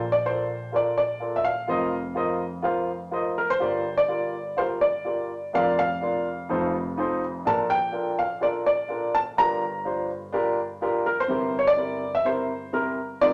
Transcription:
Already playing: A#1 A#2 C5
0.12 D5
0.25 F4 A4 A#4 C5 D5
0.72 F4 A4 A#4 D5
0.98 D5
1.20 F4 A4 A#4 D5
1.36 E5
1.44 F5
1.68 F1 F2 F4 A#4 C5 D#5
2.15 F4 A#4 C5 D#5
2.62 F4 A#4 C5 F5
3.11 F4 A#4 C5 D#5
3.38 A#4
3.50 C5
3.60 G1 G2 F4 G4 A#4 D5
3.97 D5
4.08 F4 G4 A#4 D5
4.57 F4 G4 A#4 C5 F5
4.81 D5
5.05 F4 G4 A#4 D5
5.53 F1 F2 D4 F4 A#4 D5 F5
5.79 F5
6.01 D4 F4 A#4 D5
6.49 F1 F2 D#4 F4 A4 C5
6.97 D#4 F4 A4 C5
7.45 A#1 A#2 D4 F4 A4 A#4 A5
7.70 G5
7.92 D4 F4 A4 A#4
8.19 F5
8.40 D4 F4 A4 A#4 D5
8.66 D5
8.88 D4 F4 A4 A#4
9.15 A5
9.37 G1 G2 D4 F4 G4 A#4 A#5
9.84 D4 F4 G4 C5
10.32 D4 F4 G4 A#4
10.81 D4 F4 G4 A#4
11.06 A#4
11.20 C5
11.28 G1 G2 C4 E4 G4 A#4
11.59 C#5
11.67 D5
11.76 C4 E4 G4 A#4
12.15 E5
12.25 C4 E4 G4 A#4 C5
12.73 C4 E4 G4 A#4
13.21 F1 F2 C4 D#4 F4 A#4 D5

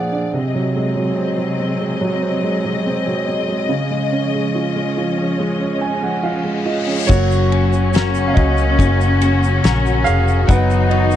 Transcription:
Already playing: A#2 F3 A#3 D4 F4 G#4 D5 F5 F#5
0.12 D4
0.33 C3 F#3 C4 G#4 D#5
0.54 F#3
0.76 G#3
0.96 F#3
1.17 C4
1.38 F#3
1.59 C4
1.80 G#3
2.01 F#3
2.22 C5
2.43 G#3
2.65 F#3
2.86 C4
3.07 F#3
3.27 C4
3.48 G#3
3.69 C#3 F3 C#4
3.91 G#3
4.12 C#4
4.34 G#3
4.55 F4
4.76 G#3
4.97 F4
5.18 C#4
5.39 G#3, reverse cymbal
5.61 C#5
5.81 C#4 G#5
6.02 G#3 F#5
6.23 F4 F5
6.44 G#3
6.66 F4 D#5
6.87 C#4
7.07 F#1 C#3 F#3 A#3 C#4 F#4 C#5, kick, crash
7.11 shaker
7.31 shaker
7.52 C#4, ride
7.73 shaker
7.94 C#4 F#4 A#4, snare, ride, shaker
8.15 shaker
8.27 F5
8.34 C#2 F#4 D#5, kick, ride
8.57 shaker
8.78 F#1 F#3 A#3 C#4, kick, ride, shaker
9.01 shaker
9.22 F#4, ride, shaker
9.44 shaker
9.64 A#1 C#4 F#4 A#4, snare, ride, shaker
9.86 shaker
10.04 F1 G#4 F5, ride, shaker
10.28 shaker
10.47 F#1 D#3 F#3 B3 D#4 B4 F#5, kick, ride, shaker
10.70 shaker
10.89 B3 F#4 D#5, ride
11.11 shaker

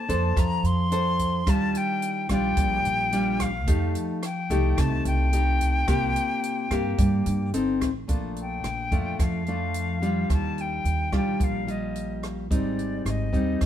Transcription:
Already playing: A#3 A5
0.09 F2 D4 A4 C5, kick, closed hi-hat
0.36 F2 F3 A#5, kick, cross-stick, closed hi-hat
0.63 F2 C6, closed hi-hat
0.92 D4 A4 C5, closed hi-hat
1.19 kick, closed hi-hat
1.46 D#2 D#3 G3 D4 F4 A5, kick, cross-stick, closed hi-hat
1.75 G5, closed hi-hat
2.02 closed hi-hat
2.29 A#1 G3 D4 F4 G5, kick, cross-stick, closed hi-hat
2.57 A#1 A#2, kick, closed hi-hat
2.85 A#1, closed hi-hat
3.12 G3 D4 F4, closed hi-hat
3.40 F5, kick, cross-stick, closed hi-hat
3.67 F2 F3 A3 D#4 G4, kick, closed hi-hat
3.95 closed hi-hat
4.23 G5, cross-stick, closed hi-hat
4.50 C2 A3 D#4 G4, kick, closed hi-hat
4.77 C2 C3 A5, kick, cross-stick, closed hi-hat
5.05 C2 G5, closed hi-hat
5.33 A3 D#4 G4, closed hi-hat
5.60 kick, closed hi-hat
5.88 C2 C3 A#3 F4 G4, kick, cross-stick, closed hi-hat
6.16 closed hi-hat
6.43 closed hi-hat
6.71 G2 A#3 F4 G4, kick, cross-stick, closed hi-hat
6.98 G2 G3, kick, closed hi-hat
7.26 G2, closed hi-hat
7.54 G1 C4 D#4 A4, closed hi-hat
7.81 A1, kick, cross-stick, closed hi-hat
8.08 A#1 A#2 A3 D4 F4, kick, closed hi-hat
8.36 closed hi-hat
8.42 G5
8.64 A#1, cross-stick, closed hi-hat
8.92 F2 A3 D4 F4, kick, closed hi-hat
9.19 F2 F3 F5, kick, cross-stick, closed hi-hat
9.46 A3 D4 F4, closed hi-hat
9.74 closed hi-hat
10.02 G3 D4 F4, closed hi-hat
10.29 D#2 D#3 A5, kick, cross-stick, closed hi-hat
10.58 G5, closed hi-hat
10.84 D#2, closed hi-hat
11.12 A#1 G3 D4 F4 G5, kick, cross-stick, closed hi-hat
11.40 A#1 A#2, kick, closed hi-hat
11.44 F5
11.67 G3 F4 D#5, closed hi-hat
11.95 closed hi-hat
12.23 cross-stick, closed hi-hat
12.50 G#1 G#2 G3 C4 D#4 D5, kick, closed hi-hat
12.79 closed hi-hat
13.05 G#1, cross-stick, closed hi-hat
13.10 D#5
13.33 D#2 G3 C4 D#4, kick, closed hi-hat
13.60 D#2 D#3, kick, cross-stick, closed hi-hat

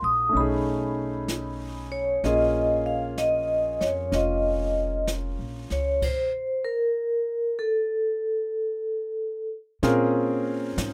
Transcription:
Already playing: A#3 C4 D#4 F#4
0.02 A#1 D#6
0.29 A3 C#4
0.34 B1 D#4 B5, brush sweep
0.40 G#4
1.28 brush sweep, snare, hi-hat pedal
1.92 C#5
2.24 A#1 A#3 C#4 F4 G#4 D#5, brush sweep, snare
2.86 F5
3.18 D#5, brush sweep, snare, hi-hat pedal
3.81 F2 C#5, snare
4.12 F1 C#4 F4 D#5, brush sweep, snare
5.07 brush sweep, snare, hi-hat pedal
5.39 A#1
5.70 C#2 C#5, snare
6.02 C5, kick, crash
6.65 A#4
7.59 A4
9.83 A#2 C4 C#4 F4 G#4 A#4, brush sweep, snare
10.78 G#2, snare, hi-hat pedal

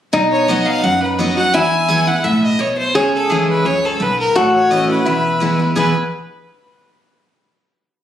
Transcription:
0.13 B1 B2 D#4
0.32 C#5
0.48 F#3 B3 D#4 F#4 D#5
0.66 F5
0.83 F#1 F#2 F#5
1.03 B4
1.19 F#3 B3 D#4 F#4 D#5
1.37 D#4 F#4 F#5
1.54 E2 E4 G#5
1.88 E3 G#3 B3 E4
2.07 B3 E4 F#5
2.24 B1 A2 E5
2.44 D#5
2.59 B2 C#5
2.78 C5
2.95 C#2 C#3 G#4 C#5
3.14 A4
3.30 E3 G#3 C#4 E4 G#4
3.49 B4
3.65 C#2 F#2 C#5
3.85 A4
4.00 B1 G#2 B4
4.20 A#4
4.35 A1 A2 F#4 A4
4.55 C#5
4.71 E3 A3 C#4 E4 D#5
4.89 C#4 E4 B4
5.06 E1 E2 E4
5.40 E3 G#3 B3 E4
5.59 B3 E4
5.75 E2 B2 E3 G#3 B3 E4 G#4 B4

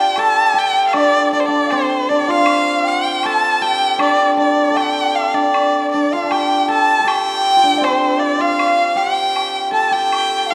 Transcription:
Already playing: C4 D4 F4 G4 G5
0.16 A4 A5, high woodblock, low woodblock
0.21 A5
0.51 G4 A5
0.59 G5
0.87 F5
0.93 D4 D5, high woodblock
0.98 D5
1.32 D4 D5
1.40 C5
1.46 D4 D5 F5 G5
1.51 C6 D6
1.59 G5 A5
1.65 F5
1.70 C4 C5 D5, high woodblock, low woodblock
2.09 D4 D5
2.20 G5
2.28 F4 F5
2.46 high woodblock
2.85 G5
3.23 A4 A5, high woodblock, low woodblock
3.61 G4 G5
3.98 D4 D5, high woodblock
4.36 D4 D5
4.71 A4
4.76 G4 G5, high woodblock, low woodblock
5.15 F5
5.19 C6 D6
5.25 G5 A5
5.30 D4 D5 F5
5.34 D5
5.54 high woodblock
5.91 D4 D5
6.12 F4 F5
6.24 A5
6.29 G4 G5, high woodblock, low woodblock
6.67 A4 A5
7.00 A4
7.04 G4 G5, high woodblock
7.56 F4
7.63 D4
7.74 D4 D5
7.81 C4 C5, high woodblock, low woodblock
7.86 C5
8.18 D5 F5
8.23 D5
8.39 F4 F5
8.59 high woodblock
8.95 G4 G5
9.36 high woodblock, low woodblock
9.71 A4 A5
9.84 A5
9.89 G4 G5
10.12 high woodblock
10.47 F5

